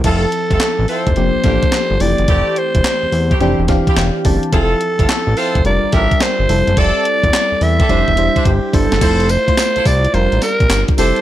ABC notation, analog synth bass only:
X:1
M:4/4
L:1/16
Q:"Swing 16ths" 1/4=107
K:F
V:1 name="Analog synth bass" clef=bass
F,,,2 z G,,, z A,,, z F,,, F,,, A,,, A,,, z2 G,,, F,,, _G,,, | F,,, z2 E,,, z E,, E,,2 F,,, E,,,2 z E,,, z _G,,, z | F,,,2 z G,,, z A,,, z F,,, F,,, A,,, A,,, z2 G,,, F,,, _G,,, | F,,, z2 E,,, z E,, E,,2 F,,, E,,,2 z G,,, z G,,, _G,,, |
F,,,3 z2 C,, C,,2 F,,, A,,, z B,,, G,,, z F,,, z |]